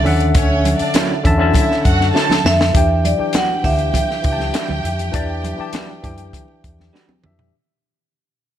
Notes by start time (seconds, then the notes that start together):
Already playing: D3 C#4 D4 D5 E5 F#5 A5
0.04 D#2 D3 C#4 E5 F#5, open hi-hat, low conga
0.20 closed hi-hat
0.35 D2 C#4 C#5, kick, closed hi-hat
0.50 muted conga
0.64 closed hi-hat, high conga
0.79 D4 D5, muted fingered electric bass stroke, closed hi-hat
0.94 F#3 C#4 E4, snare, closed hi-hat, high conga
1.09 muted conga
1.23 E2 D3 C#4 E5 A5, kick, closed hi-hat, low conga
1.38 D3 F#3 C#4 E4 E5 A5
1.54 E4 E5, kick, closed hi-hat, muted conga, high conga, low conga
1.69 snare, muted conga
1.84 F#2 F#4 F#5, kick, closed hi-hat
2.01 snare
2.14 F#3 C#4 E4 A4 A5, snare
2.30 snare, high conga
2.44 F2 E5, snare, low conga
2.61 snare
2.73 E2 E3 D4 G4 G5, kick, closed hi-hat, muted conga
2.77 G5
3.04 D5, closed hi-hat, high conga
3.18 E3 D4 G4 G5, muted fingered electric bass stroke
3.33 G3 D4 F#4 F#5, snare, closed hi-hat, high conga
3.49 muted conga
3.63 D2 E3 D4 G4 E5 F5, kick, open hi-hat, low conga
3.73 G5
3.79 closed hi-hat
3.94 kick, closed hi-hat, muted conga, high conga, low conga
4.11 snare
4.22 C#2 E3 D4 G4 G5, kick, closed hi-hat
4.32 A5
4.38 snare, high conga
4.53 G3 D4 F#4, snare, closed hi-hat
4.68 D2, high conga
4.83 F2, closed hi-hat, low conga
4.99 closed hi-hat
5.12 E2 E3 D4 G4 D5, kick, closed hi-hat
5.44 closed hi-hat, high conga
5.57 E3 D4 G4, muted fingered electric bass stroke
5.61 A5
5.73 G3 D4 F#4, snare, closed hi-hat, muted conga, high conga
6.02 F#2 E3 D4 G4 G5, kick, closed hi-hat, low conga
6.18 closed hi-hat
6.33 kick, closed hi-hat, high conga, low conga
6.48 muted conga
6.64 E2, kick, closed hi-hat
6.79 snare, high conga
6.93 G3 D4 F#4, snare
7.09 high tom, muted conga, high conga
7.22 F2 E3 D4 G4 E5, mid tom, low conga
7.39 floor tom